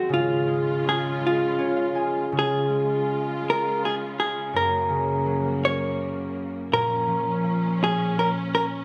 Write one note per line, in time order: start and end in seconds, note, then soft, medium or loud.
0.00 0.15 G#2 medium
0.00 0.15 D#3 soft
0.00 0.15 C4 soft
0.00 0.13 F#4 medium
0.09 2.31 C#3 medium
0.09 2.32 C#3 medium
0.09 2.32 G#3 medium
0.09 2.32 F4 medium
0.14 1.25 F4 medium
0.47 1.20 G#3 soft
0.84 1.58 C#4 soft
0.89 1.25 G#4 medium
1.21 1.94 G#3 soft
1.27 2.33 F4 medium
1.58 4.48 C#4 soft
1.58 3.50 C#5 medium
1.76 3.43 F5 medium
1.95 2.39 G#3 soft
1.95 3.45 G#5 medium
2.32 4.59 C#3 medium
2.32 6.68 C#3 medium
2.32 4.53 G#3 medium
2.32 4.53 F4 medium
2.39 3.44 G#4 medium
2.70 3.43 G#3 soft
3.08 4.59 F4 soft
3.44 4.59 G#3 soft
3.50 3.82 A#4 medium
3.85 3.95 G#4 medium
4.20 4.56 G#4 medium
4.53 6.76 F#2 medium
4.53 6.70 F#2 medium
4.53 6.70 A#3 medium
4.53 5.59 A#4 medium
4.90 6.76 C#3 soft
5.26 6.76 F#3 medium
5.62 7.43 A#3 medium
5.62 6.68 C#5 medium
6.72 8.85 A#2 medium
6.72 8.85 F3 medium
6.72 8.85 C#4 medium
6.72 7.83 A#4 medium
7.08 8.85 F3 soft
7.44 8.85 A#3 soft
7.81 8.85 C#4 soft
7.81 8.19 G#4 medium
8.19 8.29 A#4 medium
8.55 8.65 A#4 medium